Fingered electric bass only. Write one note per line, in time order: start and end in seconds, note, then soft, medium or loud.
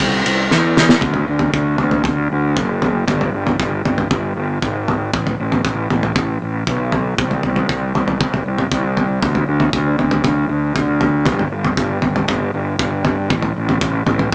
0.00 0.22 C2 medium
0.26 0.48 C2 medium
0.50 0.94 E2 medium
1.02 1.26 D2 medium
1.28 1.51 D2 medium
1.53 1.77 D2 medium
1.80 2.03 D2 medium
2.05 2.28 D2 medium
2.32 2.54 D2 medium
2.57 3.04 F#1 medium
3.08 3.31 G1 medium
3.34 3.57 G1 medium
3.60 3.83 G1 medium
3.85 4.08 G1 medium
4.11 4.34 G1 medium
4.37 4.60 G1 medium
4.63 5.10 G#1 medium
5.13 5.36 A1 medium
5.40 5.62 A1 medium
5.65 5.88 A1 medium
5.91 6.13 A1 medium
6.16 6.39 A1 medium
6.42 6.65 A1 medium
6.67 7.14 B1 medium
7.18 7.41 C2 medium
7.45 7.68 C2 medium
7.70 7.93 C2 medium
7.96 8.19 C2 medium
8.20 8.43 C2 medium
8.46 8.69 C2 medium
8.71 9.18 C2 medium
9.22 9.45 D2 medium
9.48 9.71 D2 medium
9.73 9.96 D2 medium
9.99 10.22 D2 medium
10.25 10.48 D2 medium
10.49 10.72 D2 medium
10.76 11.28 D2 medium
11.27 11.50 G1 medium
11.52 11.75 G1 medium
11.77 12.01 G1 medium
12.02 12.26 G1 medium
12.29 12.52 G1 medium
12.54 12.77 G1 medium
12.80 13.27 G1 medium
13.31 13.54 A1 medium
13.56 13.79 A1 medium
13.82 14.04 A1 loud
14.06 14.29 A1 medium